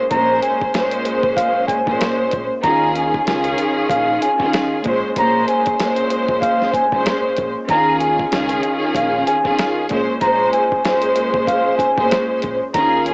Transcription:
0.10 fingered electric bass A#1, string section A#2 G#3 C#4 C5, muted trumpet A#5, kick, closed hi-hat
0.42 muted trumpet G#5, closed hi-hat
0.62 kick
0.74 string section A#2 G#3 C#4 C5, snare, closed hi-hat
0.91 closed hi-hat
1.05 closed hi-hat
1.23 fingered electric bass A#1, kick
1.37 muted trumpet F5, kick, closed hi-hat
1.67 muted trumpet G#5, kick, closed hi-hat
1.85 fingered electric bass G#1, string section A#2 G#3 C#4 C5, kick
2.01 snare, closed hi-hat
2.31 fingered electric bass A#1, kick, closed hi-hat
2.63 fingered electric bass D#2, string section D#3 C#4 F4 G#4, muted trumpet A#5, kick, closed hi-hat
2.95 muted trumpet G#5, closed hi-hat
3.14 kick
3.25 fingered electric bass C#2, string section D#3 C#4 F4 G#4, snare, closed hi-hat
3.44 closed hi-hat
3.58 closed hi-hat
3.89 fingered electric bass A#1, muted trumpet F5, kick, closed hi-hat
4.22 muted trumpet G#5, closed hi-hat
4.38 string section D#3 C#4 F4 G#4, kick
4.53 snare, closed hi-hat
4.84 fingered electric bass A#1, string section A#2 G#3 C#4 C5, kick, closed hi-hat
5.16 fingered electric bass A#1, string section A#2 G#3 C#4 C5, muted trumpet A#5, kick, closed hi-hat
5.48 muted trumpet G#5, closed hi-hat
5.66 kick, closed hi-hat
5.79 string section A#2 G#3 C#4 C5, snare, closed hi-hat
5.96 closed hi-hat
6.10 closed hi-hat
6.29 fingered electric bass A#1, kick
6.41 muted trumpet F5, kick, closed hi-hat
6.62 snare
6.73 muted trumpet G#5, kick, closed hi-hat
6.91 fingered electric bass G#1, string section A#2 G#3 C#4 C5, kick
7.06 snare, closed hi-hat
7.37 fingered electric bass A#1, kick, closed hi-hat
7.68 fingered electric bass D#2, string section D#3 C#4 F4 G#4, muted trumpet A#5, kick, closed hi-hat
8.00 muted trumpet G#5, closed hi-hat
8.19 kick
8.30 fingered electric bass C#2, string section D#3 C#4 F4 G#4, snare, closed hi-hat
8.49 closed hi-hat
8.63 closed hi-hat
8.95 fingered electric bass A#1, muted trumpet F5, kick, closed hi-hat
9.27 muted trumpet G#5, closed hi-hat
9.43 string section D#3 C#4 F4 G#4, kick
9.59 snare, closed hi-hat
9.89 fingered electric bass A#1, string section A#2 G#3 C#4 C5, kick, closed hi-hat
10.21 fingered electric bass A#1, string section A#2 G#3 C#4 C5, muted trumpet A#5, kick, closed hi-hat
10.52 muted trumpet G#5, closed hi-hat
10.72 kick
10.84 string section A#2 G#3 C#4 C5, snare, closed hi-hat
11.02 closed hi-hat
11.16 closed hi-hat
11.34 fingered electric bass A#1, kick
11.47 muted trumpet F5, kick, closed hi-hat
11.78 muted trumpet G#5, kick, closed hi-hat
11.96 fingered electric bass G#1, string section A#2 G#3 C#4 C5, kick
12.11 snare, closed hi-hat
12.42 fingered electric bass A#1, kick, closed hi-hat
12.73 fingered electric bass D#2, string section D#3 C#4 F4 G#4, muted trumpet A#5, kick, closed hi-hat
13.06 muted trumpet G#5, closed hi-hat

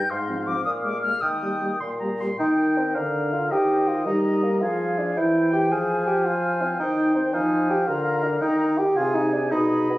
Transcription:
Already playing: oboe G5, flute G6
0.10 bassoon G#2, oboe F5, flute C6
0.29 french horn F3, clarinet C4
0.47 french horn F3, clarinet C4, flute D6
0.65 bassoon A#2, flute D#6
0.84 french horn G#3, clarinet A#3, flute D6
1.03 french horn G#3, clarinet A#3, flute F6
1.21 bassoon D#3, oboe G5, flute D#6
1.42 french horn G3, clarinet A#3
1.61 french horn G3, clarinet A#3
1.80 bassoon A#2, oboe C6
2.00 french horn G3, clarinet A#3, oboe A#5
2.19 french horn G3, clarinet A#3, oboe C6
2.39 french horn D#3, bassoon D#4, clarinet A#4, oboe G5, flute G5
2.77 bassoon C4
2.94 french horn D3, bassoon D4, oboe F5, flute A#5
3.33 bassoon F4
3.51 french horn D#3, bassoon G4, clarinet C5, oboe D#5, flute G5
3.88 bassoon F4
4.06 french horn G3, bassoon D#4, clarinet A#4, flute A#5
4.43 bassoon A#3
4.62 french horn F3, bassoon F4, clarinet G#4, flute F5, oboe G#5
4.99 bassoon D4
5.17 french horn E3, bassoon E4, clarinet C5, oboe G5, flute G5
5.53 bassoon G4
5.71 french horn F3, bassoon G#4, oboe F5, flute G#5
6.07 bassoon G4
6.25 bassoon F4, flute G#5
6.62 bassoon C4
6.79 french horn D#3, bassoon D#4, oboe G5, flute G5
7.16 bassoon C4
7.33 french horn F3, bassoon D#4, clarinet C5, oboe F5, flute G#5
7.70 bassoon G4
7.87 french horn D3, bassoon F4, clarinet A#4, flute A#5
8.23 bassoon D4
8.41 french horn D#3, bassoon D#4, clarinet A#4, oboe G5, flute A#5
8.78 bassoon G4
8.96 french horn C3, bassoon F4, clarinet G#4, oboe G#5, flute G#5
9.15 bassoon D#4
9.33 bassoon D4
9.51 french horn B2, bassoon D#4, clarinet G#4, oboe D#5, flute B5
9.90 bassoon B3

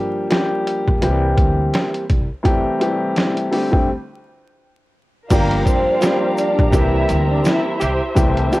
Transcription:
Already playing: grand piano F3 G3 A#3 D4 G4
0.30 grand piano F3 G3 A#3 D4 G4, snare, closed hi-hat
0.67 closed hi-hat
0.87 upright bass A#1, kick
1.01 upright bass C2, grand piano E3 G3 A#3 C4 G4, closed hi-hat
1.37 upright bass D2, kick, closed hi-hat
1.74 snare, closed hi-hat
1.94 closed hi-hat
2.10 upright bass C2, kick, closed hi-hat
2.43 grand piano C2 E3 G3 A3 C4 G4, kick, closed hi-hat
2.80 grand piano C2 E3 G3 A3 C4 G4, closed hi-hat
3.16 snare, closed hi-hat
3.37 closed hi-hat
3.51 grand piano D3 G3 A3 C4 G4, open hi-hat
3.71 grand piano D3 G3 A3 C4 G4, kick
5.30 upright bass G1, grand piano F3 G3 A#3 D4 G4, violin section A#3 A#4, string section G4 D5 F5 A#5, kick, closed hi-hat, crash, shaker
5.51 closed hi-hat
5.66 violin section C4 C5, kick, closed hi-hat, shaker
6.01 grand piano F3 G3 A#3 D4 G4, snare, closed hi-hat, shaker
6.38 violin section D4 D5, closed hi-hat, shaker
6.59 upright bass A#1, kick
6.72 upright bass C2, saxophone section E3 C4 G4, grand piano E3 G3 A#3 C4 G4, violin section E4 E5, string section C5 E5, kick, closed hi-hat, shaker
7.09 upright bass D2, closed hi-hat, shaker
7.30 violin section D4 D5
7.45 violin section E4 E5, snare, closed hi-hat, shaker
7.80 upright bass C2, saxophone section E3 C4 G4, closed hi-hat, shaker
8.15 grand piano C2 E3 G3 A3 C4 G4, upright bass C2, string section A5, kick, closed hi-hat, shaker
8.37 closed hi-hat
8.51 grand piano C2 E3 G3 A3 C4 G4, closed hi-hat, shaker

